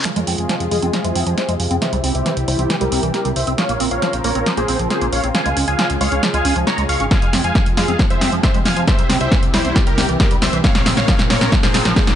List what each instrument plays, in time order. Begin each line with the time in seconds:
0.05 analog synth pad C3 G#3 F4 G#4, acid bass F3, supersaw synth F5 G#5, snare, closed hi-hat
0.16 analog synth bass F2, acid bass G#3, closed hi-hat
0.27 analog synth bass F2, acid bass C4, open hi-hat
0.38 analog synth bass F2, supersaw synth F5 G#5, closed hi-hat
0.49 acid bass F3, snare, closed hi-hat
0.60 analog synth bass F2, closed hi-hat
0.71 analog synth bass F2, acid bass G#3, supersaw synth G#4 F5, open hi-hat
0.82 analog synth bass F2, acid bass C4, closed hi-hat
0.93 acid bass F3, snare, closed hi-hat
1.04 analog synth bass F2, acid bass G#3, supersaw synth C5 E5, closed hi-hat
1.16 analog synth bass F2, acid bass C4, open hi-hat
1.27 analog synth bass F2, acid bass F3, closed hi-hat
1.38 supersaw synth C5 E5, snare, closed hi-hat
1.49 analog synth bass F2, acid bass G#3, closed hi-hat
1.60 analog synth bass F2, supersaw synth F5 G#5, open hi-hat
1.71 analog synth bass F2, acid bass C4, closed hi-hat
1.82 acid bass E3, analog synth pad G3 E4 G4, supersaw synth C5 E5, snare, closed hi-hat
1.93 analog synth bass C2, acid bass G3, closed hi-hat
2.04 analog synth bass C2, acid bass C4, open hi-hat
2.15 analog synth bass C2, supersaw synth C5 E5, closed hi-hat
2.26 acid bass E3, snare, closed hi-hat
2.37 analog synth bass C2, closed hi-hat
2.48 analog synth bass C2, acid bass G3, supersaw synth E4 C5, open hi-hat
2.59 analog synth bass C2, acid bass C4, closed hi-hat
2.70 acid bass E3, snare, closed hi-hat
2.81 analog synth bass C2, acid bass G3, supersaw synth G4 A#4, closed hi-hat
2.92 analog synth bass C2, acid bass C4, open hi-hat
3.03 analog synth bass C2, acid bass E3, closed hi-hat
3.14 supersaw synth G4 A#4, snare, closed hi-hat
3.25 analog synth bass C2, acid bass G3, closed hi-hat
3.36 analog synth bass C2, supersaw synth C5 E5, open hi-hat
3.47 analog synth bass C2, acid bass C4, closed hi-hat
3.58 analog synth pad C#3 C4 F4 A#4, acid bass F3, supersaw synth C#5 F5, snare, closed hi-hat
3.69 analog synth bass A#1, acid bass A#3, closed hi-hat
3.80 analog synth bass A#1, acid bass C4, open hi-hat
3.91 analog synth bass A#1, supersaw synth C#5 F5, closed hi-hat
4.02 acid bass F3, snare, closed hi-hat
4.13 analog synth bass A#1, closed hi-hat
4.24 analog synth bass A#1, acid bass A#3, supersaw synth A#4 C#5, open hi-hat
4.35 analog synth bass A#1, acid bass C4, closed hi-hat
4.46 acid bass F3, snare, closed hi-hat
4.57 analog synth bass A#1, acid bass A#3, supersaw synth G#4 C5, closed hi-hat
4.68 analog synth bass A#1, acid bass C4, open hi-hat
4.79 analog synth bass A#1, acid bass F3, closed hi-hat
4.90 supersaw synth G#4 C5, snare, closed hi-hat
5.01 analog synth bass A#1, acid bass A#3, closed hi-hat
5.13 analog synth bass A#1, supersaw synth C#5 F5, open hi-hat
5.24 analog synth bass A#1, acid bass C4, closed hi-hat
5.35 acid bass F3, analog synth pad G#3 G#4, supersaw synth F5 G#5, snare, closed hi-hat
5.46 analog synth bass C#2, acid bass G#3, closed hi-hat
5.57 analog synth bass C#2, acid bass C#4, open hi-hat
5.68 analog synth bass C#2, supersaw synth F5 G#5, closed hi-hat
5.79 acid bass F3, snare, closed hi-hat
5.90 analog synth bass C#2, closed hi-hat
6.01 analog synth bass C#2, acid bass G#3, supersaw synth C#5 F5, open hi-hat
6.12 analog synth bass C#2, acid bass C#4, closed hi-hat
6.23 acid bass F3, snare, closed hi-hat
6.34 analog synth bass C#2, acid bass G#3, supersaw synth F5 G#5, closed hi-hat
6.45 analog synth bass C#2, acid bass C#4, open hi-hat
6.56 analog synth bass C#2, acid bass F3, closed hi-hat
6.67 supersaw synth C#5 A#5, snare, closed hi-hat
6.78 analog synth bass C#2, acid bass G#3, closed hi-hat
6.89 analog synth bass C#2, supersaw synth F5 C#6, open hi-hat
7.00 analog synth bass G#1, acid bass C#4, closed hi-hat
7.11 analog synth pad C3 G#3 F4, acid bass F3, supersaw synth F5 G#5, kick, snare, closed hi-hat, riser
7.22 analog synth bass F2, acid bass G#3, closed hi-hat
7.33 analog synth bass F2, acid bass C4, snare, open hi-hat
7.44 analog synth bass F2, supersaw synth F5 G#5, closed hi-hat
7.55 acid bass F3, kick, snare, closed hi-hat
7.66 analog synth bass F2, closed hi-hat
7.77 analog synth bass F2, acid bass G#3, supersaw synth G#4 F5, snare, open hi-hat
7.88 analog synth bass F2, acid bass C4, closed hi-hat
7.99 acid bass F3, kick, snare, closed hi-hat
8.10 analog synth bass F2, acid bass G#3, supersaw synth C5 E5, closed hi-hat
8.21 analog synth bass F2, acid bass C4, snare, open hi-hat
8.32 analog synth bass F2, acid bass F3, closed hi-hat
8.43 supersaw synth C5 E5, kick, snare, closed hi-hat
8.54 analog synth bass F2, acid bass G#3, closed hi-hat
8.65 analog synth bass F2, supersaw synth F5 G#5, snare, open hi-hat
8.77 analog synth bass F2, acid bass F3, closed hi-hat
8.88 acid bass E3, analog synth pad G3 E4 G4, supersaw synth C5 E5, kick, snare, closed hi-hat
8.99 analog synth bass C2, acid bass G3, closed hi-hat
9.10 analog synth bass C2, acid bass C4, snare, open hi-hat
9.21 analog synth bass C2, supersaw synth C5 E5, closed hi-hat
9.32 acid bass E3, kick, snare, closed hi-hat
9.43 analog synth bass C2, closed hi-hat
9.54 analog synth bass C2, acid bass G3, supersaw synth E4 C5, snare, open hi-hat
9.65 analog synth bass C2, acid bass C4, closed hi-hat
9.76 acid bass E3, kick, snare, closed hi-hat
9.87 analog synth bass C2, acid bass G3, supersaw synth G4 A#4, closed hi-hat
9.98 analog synth bass C2, acid bass C4, snare, open hi-hat
10.09 analog synth bass C2, acid bass E3, closed hi-hat
10.20 supersaw synth G4 A#4, kick, snare, closed hi-hat
10.31 analog synth bass C2, acid bass G3, closed hi-hat
10.42 analog synth bass C2, supersaw synth C5 E5, snare, open hi-hat
10.53 analog synth bass C2, acid bass E3, closed hi-hat
10.64 analog synth pad C#3 C4 F4 A#4, acid bass F3, supersaw synth C#5 F5, kick, snare, closed hi-hat
10.75 analog synth bass A#1, acid bass A#3, snare, closed hi-hat
10.86 analog synth bass A#1, acid bass C4, snare, open hi-hat
10.97 analog synth bass A#1, supersaw synth C#5 F5, snare, closed hi-hat
11.08 acid bass F3, kick, snare, closed hi-hat
11.19 analog synth bass A#1, snare, closed hi-hat
11.30 analog synth bass A#1, acid bass A#3, supersaw synth A#4 C#5, snare, open hi-hat
11.41 analog synth bass A#1, acid bass C4, snare, closed hi-hat
11.52 acid bass F3, kick, snare, closed hi-hat
11.63 analog synth bass A#1, acid bass A#3, supersaw synth G#4 C5, snare, closed hi-hat
11.74 analog synth bass A#1, acid bass C4, snare, open hi-hat
11.85 analog synth bass A#1, acid bass F3, snare, closed hi-hat
11.96 supersaw synth G#4 C5, kick, snare, closed hi-hat
12.07 analog synth bass A#1, acid bass A#3, snare, closed hi-hat